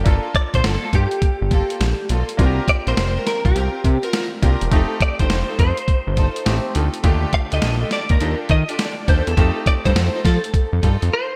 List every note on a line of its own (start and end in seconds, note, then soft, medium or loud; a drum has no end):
0.04 0.20 G1 loud
0.04 2.34 A#3 medium
0.04 0.26 A#3 medium
0.04 2.34 D4 medium
0.04 0.27 F4 medium
0.04 2.35 F4 medium
0.04 0.27 A4 loud
0.04 2.35 A4 medium
0.04 kick loud
0.04 closed hi-hat medium
0.35 0.41 D5 loud
0.35 kick loud
0.35 closed hi-hat medium
0.53 0.61 A#1 medium
0.53 0.68 A#3 medium
0.53 0.68 F4 medium
0.53 0.68 A4 medium
0.53 0.66 C5 medium
0.53 kick medium
0.53 closed hi-hat medium
0.64 0.78 G1 medium
0.64 0.95 A4 medium
0.64 snare loud
0.64 closed hi-hat medium
0.82 0.97 A#3 medium
0.82 0.97 F4 medium
0.82 0.97 A4 medium
0.93 1.07 G2 medium
0.93 2.06 G4 medium
0.93 kick medium
0.93 closed hi-hat medium
1.11 closed hi-hat medium
1.22 1.29 G1 soft
1.22 kick loud
1.22 closed hi-hat medium
1.41 1.63 G1 medium
1.51 1.72 A#3 medium
1.51 1.72 F4 medium
1.51 1.72 A4 medium
1.51 kick medium
1.51 closed hi-hat medium
1.70 closed hi-hat medium
1.80 1.94 A#1 medium
1.80 snare loud
1.80 closed hi-hat medium
2.09 2.23 B1 medium
2.09 2.30 A#3 medium
2.09 2.31 F4 medium
2.09 2.31 A4 medium
2.09 closed hi-hat medium
2.29 closed hi-hat medium
2.37 2.60 C2 loud
2.37 4.38 A#3 medium
2.37 2.59 C4 medium
2.37 4.38 D4 medium
2.37 2.60 F4 medium
2.37 4.39 F4 medium
2.37 2.48 F#4 medium
2.37 2.60 A#4 medium
2.37 kick loud
2.37 closed hi-hat medium
2.46 4.42 G4 medium
2.68 2.74 D5 loud
2.68 kick medium
2.68 closed hi-hat medium
2.87 2.94 A#1 medium
2.87 3.01 C4 medium
2.87 3.01 F4 medium
2.87 3.01 A#4 medium
2.87 3.27 C5 medium
2.87 closed hi-hat medium
2.97 3.18 F1 medium
2.97 snare loud
2.97 closed hi-hat medium
3.15 3.30 C4 medium
3.15 3.30 F4 medium
3.15 3.30 A#4 medium
3.27 3.46 A#4 medium
3.27 snare medium
3.27 closed hi-hat medium
3.45 3.52 C2 medium
3.45 4.11 G4 medium
3.45 kick loud
3.45 closed hi-hat soft
3.55 3.69 C2 loud
3.55 3.76 C4 medium
3.55 3.76 F4 medium
3.55 3.76 A#4 medium
3.55 closed hi-hat medium
3.84 3.98 C3 loud
3.84 kick loud
3.84 closed hi-hat medium
4.03 4.17 C4 medium
4.03 4.17 F4 medium
4.03 4.18 A#4 medium
4.03 closed hi-hat medium
4.11 4.39 F4 medium
4.11 snare loud
4.11 closed hi-hat medium
4.42 4.56 C2 medium
4.42 4.71 A#3 medium
4.42 4.63 C4 medium
4.42 4.72 D4 medium
4.42 4.63 F4 medium
4.42 4.72 F4 medium
4.42 4.71 G4 medium
4.42 4.64 A#4 medium
4.42 kick medium
4.42 closed hi-hat medium
4.61 4.69 E1 loud
4.61 closed hi-hat medium
4.71 4.85 F1 loud
4.71 6.42 A3 medium
4.71 6.43 C4 medium
4.71 4.92 D#4 medium
4.71 6.43 D#4 medium
4.71 4.93 F4 medium
4.71 6.44 G4 medium
4.71 4.93 A4 loud
4.71 kick loud
4.71 closed hi-hat medium
5.01 5.20 D5 loud
5.01 kick loud
5.01 closed hi-hat medium
5.19 5.27 G1 medium
5.19 5.34 D#4 medium
5.19 5.34 F4 medium
5.19 5.34 A4 medium
5.19 5.58 C5 medium
5.19 kick medium
5.19 closed hi-hat medium
5.30 5.44 F1 loud
5.30 snare loud
5.30 closed hi-hat medium
5.48 5.63 D#4 medium
5.48 5.63 F4 medium
5.48 5.63 A4 medium
5.59 5.73 F2 medium
5.59 6.72 C5 medium
5.59 kick loud
5.59 closed hi-hat medium
5.77 closed hi-hat medium
5.88 5.96 G1 soft
5.88 kick loud
5.88 closed hi-hat medium
6.07 6.28 G1 medium
6.16 6.38 D#4 medium
6.16 6.38 F4 medium
6.16 6.38 A4 medium
6.16 kick medium
6.16 closed hi-hat medium
6.36 closed hi-hat medium
6.45 6.60 A1 medium
6.45 7.01 A3 medium
6.45 7.04 C4 medium
6.45 7.05 D#4 medium
6.45 7.03 G4 medium
6.45 snare loud
6.45 closed hi-hat medium
6.74 6.89 D2 loud
6.74 6.96 D#4 medium
6.74 6.96 F4 medium
6.74 6.96 A4 medium
6.74 closed hi-hat medium
6.94 closed hi-hat medium
7.03 7.26 D#2 loud
7.03 9.33 D3 medium
7.03 9.33 A3 medium
7.03 7.25 D4 medium
7.03 7.25 F4 medium
7.03 9.34 F4 medium
7.03 7.25 G4 medium
7.03 9.34 G4 medium
7.03 7.25 A4 loud
7.03 kick loud
7.03 closed hi-hat medium
7.33 7.39 F5 loud
7.33 kick loud
7.33 closed hi-hat medium
7.51 7.60 D2 medium
7.51 7.66 D4 medium
7.51 7.66 F4 medium
7.51 7.67 G4 medium
7.51 7.67 A4 medium
7.51 7.92 D#5 medium
7.51 closed hi-hat medium
7.62 7.84 A#1 loud
7.62 snare loud
7.62 closed hi-hat medium
7.81 7.96 D4 medium
7.81 7.96 F4 medium
7.81 7.96 G4 medium
7.81 7.96 A4 medium
7.91 8.12 D5 medium
7.91 snare medium
7.91 closed hi-hat medium
8.09 8.18 D#2 medium
8.09 8.38 A#4 medium
8.09 kick loud
8.09 closed hi-hat soft
8.20 8.35 D#2 loud
8.20 8.41 D4 medium
8.20 8.42 F4 medium
8.20 8.42 G4 medium
8.20 8.42 A4 medium
8.20 closed hi-hat medium
8.49 8.64 D#3 loud
8.49 8.69 D#5 medium
8.49 kick loud
8.49 closed hi-hat medium
8.68 8.83 D4 medium
8.68 8.83 F4 medium
8.68 8.83 G4 medium
8.68 8.83 A4 medium
8.68 9.10 D5 medium
8.68 closed hi-hat medium
8.79 snare loud
8.79 closed hi-hat medium
9.07 9.22 D#2 medium
9.07 9.29 D4 medium
9.07 9.29 F4 medium
9.07 9.29 G4 medium
9.07 9.29 A4 medium
9.07 9.28 C5 medium
9.07 kick loud
9.07 closed hi-hat medium
9.27 9.35 E2 medium
9.27 9.57 A4 medium
9.27 closed hi-hat soft
9.36 9.51 F2 loud
9.36 11.36 A3 medium
9.36 11.36 C4 medium
9.36 9.58 D#4 loud
9.36 11.36 D#4 medium
9.36 9.58 F4 medium
9.36 11.36 G4 medium
9.36 9.58 A4 loud
9.36 kick loud
9.36 closed hi-hat medium
9.66 9.72 D5 medium
9.66 kick medium
9.66 closed hi-hat medium
9.84 9.93 G2 medium
9.84 9.99 D#4 medium
9.84 9.99 F4 medium
9.84 10.00 A4 medium
9.84 10.25 C5 medium
9.84 kick medium
9.84 closed hi-hat medium
9.95 10.09 F2 loud
9.95 snare loud
9.95 closed hi-hat medium
10.14 10.29 D#4 medium
10.14 10.29 F4 medium
10.14 10.29 A4 medium
10.25 10.39 F3 medium
10.25 11.36 A4 medium
10.25 kick loud
10.25 snare medium
10.25 closed hi-hat medium
10.44 closed hi-hat soft
10.54 kick loud
10.54 closed hi-hat medium
10.73 10.80 F2 medium
10.82 10.97 G2 medium
10.82 11.04 D#4 medium
10.82 11.04 F4 medium
10.82 11.04 A4 medium
10.82 kick medium
10.82 closed hi-hat medium
11.02 11.10 F2 medium
11.02 closed hi-hat medium
11.13 11.36 C5 loud